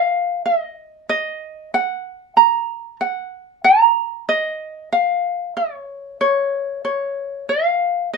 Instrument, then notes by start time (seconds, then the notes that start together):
ukulele
Already playing: F5
0.46 D#5
1.09 D#5
1.74 F#5
2.37 A#5
3.01 F#5
3.64 A#5
4.29 D#5
4.93 F5
5.57 C#5
6.21 C#5
6.85 C#5
7.49 F5
8.13 D#5